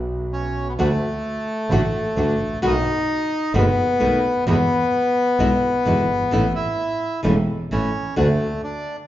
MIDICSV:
0, 0, Header, 1, 4, 480
1, 0, Start_track
1, 0, Key_signature, 2, "major"
1, 0, Tempo, 462963
1, 807, Time_signature, 4, 2, 24, 8
1, 9404, End_track
2, 0, Start_track
2, 0, Title_t, "Bandoneon"
2, 0, Program_c, 0, 23
2, 341, Note_on_c, 0, 61, 88
2, 705, Note_off_c, 0, 61, 0
2, 714, Note_on_c, 0, 59, 76
2, 762, Note_off_c, 0, 59, 0
2, 821, Note_on_c, 0, 57, 97
2, 2692, Note_off_c, 0, 57, 0
2, 2762, Note_on_c, 0, 63, 110
2, 3658, Note_off_c, 0, 63, 0
2, 3708, Note_on_c, 0, 59, 106
2, 4608, Note_off_c, 0, 59, 0
2, 4664, Note_on_c, 0, 59, 109
2, 6768, Note_off_c, 0, 59, 0
2, 6794, Note_on_c, 0, 64, 97
2, 7473, Note_off_c, 0, 64, 0
2, 8007, Note_on_c, 0, 61, 90
2, 8452, Note_off_c, 0, 61, 0
2, 8489, Note_on_c, 0, 57, 89
2, 8933, Note_off_c, 0, 57, 0
2, 8956, Note_on_c, 0, 62, 88
2, 9294, Note_off_c, 0, 62, 0
2, 9404, End_track
3, 0, Start_track
3, 0, Title_t, "Nylon-string guitar"
3, 0, Program_c, 1, 24
3, 0, Note_on_c, 1, 47, 78
3, 0, Note_on_c, 1, 54, 86
3, 0, Note_on_c, 1, 59, 86
3, 0, Note_on_c, 1, 66, 81
3, 790, Note_off_c, 1, 47, 0
3, 796, Note_off_c, 1, 54, 0
3, 796, Note_off_c, 1, 59, 0
3, 803, Note_off_c, 1, 66, 0
3, 815, Note_on_c, 1, 62, 85
3, 816, Note_on_c, 1, 57, 86
3, 819, Note_on_c, 1, 50, 78
3, 824, Note_on_c, 1, 66, 93
3, 904, Note_off_c, 1, 62, 0
3, 905, Note_off_c, 1, 57, 0
3, 906, Note_off_c, 1, 50, 0
3, 909, Note_off_c, 1, 66, 0
3, 1773, Note_on_c, 1, 50, 85
3, 1783, Note_on_c, 1, 57, 91
3, 1787, Note_on_c, 1, 66, 101
3, 1789, Note_on_c, 1, 62, 90
3, 1864, Note_off_c, 1, 50, 0
3, 1869, Note_off_c, 1, 57, 0
3, 1871, Note_off_c, 1, 66, 0
3, 1872, Note_off_c, 1, 62, 0
3, 2243, Note_on_c, 1, 50, 65
3, 2250, Note_on_c, 1, 57, 77
3, 2256, Note_on_c, 1, 62, 73
3, 2262, Note_on_c, 1, 66, 79
3, 2420, Note_off_c, 1, 50, 0
3, 2424, Note_off_c, 1, 57, 0
3, 2427, Note_off_c, 1, 62, 0
3, 2430, Note_off_c, 1, 66, 0
3, 2718, Note_on_c, 1, 47, 88
3, 2723, Note_on_c, 1, 66, 99
3, 2726, Note_on_c, 1, 59, 91
3, 2729, Note_on_c, 1, 51, 83
3, 2729, Note_on_c, 1, 57, 88
3, 2815, Note_off_c, 1, 47, 0
3, 2817, Note_off_c, 1, 66, 0
3, 2819, Note_off_c, 1, 59, 0
3, 2820, Note_off_c, 1, 51, 0
3, 2820, Note_off_c, 1, 57, 0
3, 3670, Note_on_c, 1, 47, 86
3, 3675, Note_on_c, 1, 51, 88
3, 3677, Note_on_c, 1, 57, 91
3, 3682, Note_on_c, 1, 59, 86
3, 3686, Note_on_c, 1, 66, 95
3, 3768, Note_off_c, 1, 47, 0
3, 3770, Note_off_c, 1, 51, 0
3, 3771, Note_off_c, 1, 57, 0
3, 3774, Note_off_c, 1, 59, 0
3, 3776, Note_off_c, 1, 66, 0
3, 4145, Note_on_c, 1, 57, 80
3, 4146, Note_on_c, 1, 47, 65
3, 4151, Note_on_c, 1, 59, 83
3, 4155, Note_on_c, 1, 51, 70
3, 4156, Note_on_c, 1, 66, 73
3, 4327, Note_off_c, 1, 47, 0
3, 4327, Note_off_c, 1, 57, 0
3, 4329, Note_off_c, 1, 59, 0
3, 4332, Note_off_c, 1, 51, 0
3, 4332, Note_off_c, 1, 66, 0
3, 4631, Note_on_c, 1, 47, 87
3, 4634, Note_on_c, 1, 56, 93
3, 4640, Note_on_c, 1, 59, 91
3, 4641, Note_on_c, 1, 50, 88
3, 4647, Note_on_c, 1, 64, 95
3, 4726, Note_off_c, 1, 47, 0
3, 4728, Note_off_c, 1, 56, 0
3, 4731, Note_off_c, 1, 50, 0
3, 4731, Note_off_c, 1, 59, 0
3, 4734, Note_off_c, 1, 64, 0
3, 5590, Note_on_c, 1, 50, 86
3, 5592, Note_on_c, 1, 47, 82
3, 5600, Note_on_c, 1, 56, 83
3, 5600, Note_on_c, 1, 59, 96
3, 5601, Note_on_c, 1, 64, 94
3, 5685, Note_off_c, 1, 50, 0
3, 5686, Note_off_c, 1, 47, 0
3, 5690, Note_off_c, 1, 56, 0
3, 5690, Note_off_c, 1, 59, 0
3, 5690, Note_off_c, 1, 64, 0
3, 6069, Note_on_c, 1, 47, 71
3, 6070, Note_on_c, 1, 50, 80
3, 6079, Note_on_c, 1, 56, 72
3, 6079, Note_on_c, 1, 59, 73
3, 6087, Note_on_c, 1, 64, 85
3, 6248, Note_off_c, 1, 47, 0
3, 6248, Note_off_c, 1, 50, 0
3, 6253, Note_off_c, 1, 56, 0
3, 6253, Note_off_c, 1, 59, 0
3, 6256, Note_off_c, 1, 64, 0
3, 6544, Note_on_c, 1, 52, 85
3, 6556, Note_on_c, 1, 57, 85
3, 6556, Note_on_c, 1, 61, 87
3, 6564, Note_on_c, 1, 64, 101
3, 6643, Note_off_c, 1, 52, 0
3, 6649, Note_off_c, 1, 57, 0
3, 6649, Note_off_c, 1, 61, 0
3, 6653, Note_off_c, 1, 64, 0
3, 7494, Note_on_c, 1, 52, 83
3, 7504, Note_on_c, 1, 57, 93
3, 7510, Note_on_c, 1, 61, 86
3, 7512, Note_on_c, 1, 64, 89
3, 7598, Note_off_c, 1, 52, 0
3, 7603, Note_off_c, 1, 57, 0
3, 7606, Note_off_c, 1, 61, 0
3, 7607, Note_off_c, 1, 64, 0
3, 7995, Note_on_c, 1, 52, 69
3, 8003, Note_on_c, 1, 57, 63
3, 8009, Note_on_c, 1, 61, 70
3, 8009, Note_on_c, 1, 64, 84
3, 8173, Note_off_c, 1, 52, 0
3, 8177, Note_off_c, 1, 57, 0
3, 8180, Note_off_c, 1, 61, 0
3, 8180, Note_off_c, 1, 64, 0
3, 8464, Note_on_c, 1, 50, 91
3, 8466, Note_on_c, 1, 57, 81
3, 8471, Note_on_c, 1, 62, 84
3, 8471, Note_on_c, 1, 66, 91
3, 8566, Note_off_c, 1, 50, 0
3, 8567, Note_off_c, 1, 57, 0
3, 8569, Note_off_c, 1, 62, 0
3, 8569, Note_off_c, 1, 66, 0
3, 9404, End_track
4, 0, Start_track
4, 0, Title_t, "Double bass"
4, 0, Program_c, 2, 43
4, 0, Note_on_c, 2, 35, 80
4, 710, Note_off_c, 2, 35, 0
4, 812, Note_on_c, 2, 38, 90
4, 1012, Note_off_c, 2, 38, 0
4, 1767, Note_on_c, 2, 33, 91
4, 1969, Note_off_c, 2, 33, 0
4, 2248, Note_on_c, 2, 38, 65
4, 2449, Note_off_c, 2, 38, 0
4, 2485, Note_on_c, 2, 33, 55
4, 2709, Note_off_c, 2, 33, 0
4, 2715, Note_on_c, 2, 35, 94
4, 2921, Note_off_c, 2, 35, 0
4, 3675, Note_on_c, 2, 30, 99
4, 3878, Note_off_c, 2, 30, 0
4, 4146, Note_on_c, 2, 35, 66
4, 4353, Note_off_c, 2, 35, 0
4, 4634, Note_on_c, 2, 40, 99
4, 4836, Note_off_c, 2, 40, 0
4, 5590, Note_on_c, 2, 35, 95
4, 5794, Note_off_c, 2, 35, 0
4, 6076, Note_on_c, 2, 40, 68
4, 6277, Note_off_c, 2, 40, 0
4, 6312, Note_on_c, 2, 31, 59
4, 6545, Note_off_c, 2, 31, 0
4, 6551, Note_on_c, 2, 33, 93
4, 6755, Note_off_c, 2, 33, 0
4, 7520, Note_on_c, 2, 28, 93
4, 7720, Note_off_c, 2, 28, 0
4, 8002, Note_on_c, 2, 33, 66
4, 8203, Note_off_c, 2, 33, 0
4, 8486, Note_on_c, 2, 38, 96
4, 8686, Note_off_c, 2, 38, 0
4, 9404, End_track
0, 0, End_of_file